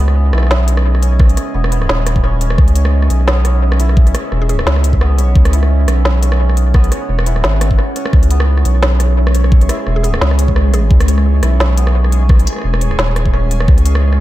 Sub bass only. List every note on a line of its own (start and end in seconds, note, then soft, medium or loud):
0.00 0.32 C#2 loud
0.33 1.36 B1 loud
1.54 1.88 E1 loud
1.89 2.57 D#1 loud
2.58 3.09 C#2 loud
3.11 4.13 B1 medium
4.32 4.65 E1 loud
4.66 5.14 C#2 medium
5.14 5.35 C2 medium
5.35 5.86 C#2 loud
5.87 6.90 B1 loud
7.09 7.43 E1 loud
7.44 7.79 G#1 medium
8.13 8.64 C#2 medium
8.65 9.68 B1 loud
9.87 10.20 E1 loud
10.21 10.90 C#2 loud
10.91 11.41 C#2 loud
11.43 12.46 B1 loud
12.64 12.98 E1 loud
12.99 13.67 D#1 medium
13.68 14.19 C#2 medium